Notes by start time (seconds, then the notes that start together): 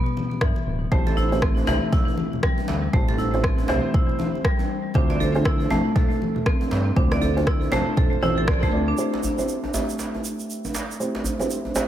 0.06 muted conga
0.17 high conga
0.31 high conga
0.41 G2 E3, kick, cross-stick
0.56 muted conga
0.66 D1
0.92 A1 A3 C4 E4 G4 C5, kick, muted conga, low conga
1.06 A4, djembe slap, high conga
1.17 E4, djembe bass
1.32 A3 C4 E4 G4 C5, muted conga, djembe tone
1.42 C4, kick, cross-stick, high conga
1.57 djembe tone
1.67 C2 E3 A3 C4 E4 G4 E5, muted conga, djembe slap, djembe bass, low conga
1.92 E4, kick, djembe slap, high conga, low conga
2.08 muted conga, djembe tone
2.18 high conga
2.33 low conga
2.43 G3, kick, cross-stick, high conga
2.58 muted conga, djembe tone
2.68 D2, djembe slap, high conga
2.93 A1 A3 C4 E4 G4 C5, kick, muted conga, low conga
3.08 A4, djembe slap
3.18 E4, djembe bass
3.34 A3 C4 E4 G4 C5, muted conga, djembe tone
3.44 C4, kick, cross-stick, high conga
3.58 djembe tone
3.68 C2 E3 A3 C4 E4 G4 C5, djembe slap, muted conga, djembe bass, low conga
3.94 E4, kick, low conga
4.09 muted conga
4.19 djembe tone, high conga
4.35 high conga
4.45 G3, kick, cross-stick
4.59 muted conga, djembe tone
4.94 D2 A3 C4 D4 F4 C5, kick, muted conga, low conga
5.10 D5, djembe slap, high conga
5.20 A4, djembe bass
5.35 A3 C4 D4 F4 C5, muted conga, djembe tone
5.45 E4, kick, cross-stick, high conga
5.60 djembe tone
5.70 F2 A3 C4 D4 F4 E5, djembe slap, muted conga, djembe bass, low conga
5.96 A4, kick, djembe slap, high conga, low conga
6.10 muted conga, djembe tone
6.22 high conga
6.36 low conga
6.46 C4, kick, cross-stick, high conga
6.61 muted conga, djembe tone
6.71 G2, djembe slap, high conga
6.96 D2 A3 C4 D4 F4 C5, kick, muted conga, low conga
7.11 D5, cross-stick, djembe slap, high conga
7.21 A4, djembe bass
7.37 A3 C4 D4 F4 C5, muted conga, djembe tone
7.47 E4, kick, cross-stick, high conga
7.62 djembe tone
7.72 F2 A3 C4 D4 F4 C5, djembe slap, muted conga, low conga, djembe bass
7.97 F2 A4, kick, djembe tone, low conga
8.13 muted conga
8.22 A1 A3 C4 D4 E4 F4 C5, djembe tone, high conga, low conga
8.38 A4, high conga
8.48 D5, kick, cross-stick
8.63 A3, kick, muted conga, djembe tone
8.73 D2 A3 C4 D4 F4 D5
8.88 D4
8.98 A3 C4 E4 G4 C5, shaker
9.13 djembe slap
9.23 djembe bass, shaker
9.38 A3 C4 E4 G4 C5, djembe tone, shaker
9.48 shaker
9.64 djembe tone
9.74 A3 C4 E4 G4 E5, djembe slap, djembe bass, shaker
9.89 shaker
9.99 djembe slap, shaker
10.15 djembe tone
10.25 shaker
10.39 shaker
10.50 shaker
10.65 djembe tone, shaker
10.74 djembe slap, shaker
10.91 shaker
11.00 A3 C4 E4 G4 C5, shaker
11.15 djembe slap
11.24 djembe bass, shaker
11.40 A3 C4 E4 G4 C5, djembe tone, shaker
11.50 shaker
11.65 djembe tone
11.75 A3 C4 E4 G4 C5, djembe slap, djembe bass, shaker